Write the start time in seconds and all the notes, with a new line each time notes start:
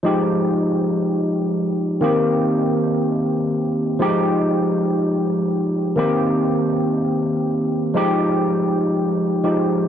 0.03 F3 G#3 D#4 G4
2.01 D#3 A#3 C4 G4
3.99 F3 G#3 D#4 G4
5.96 D#3 A#3 C4 G4
7.94 F3 G#3 D#4 G4
9.43 F3 G#3 D#4 G4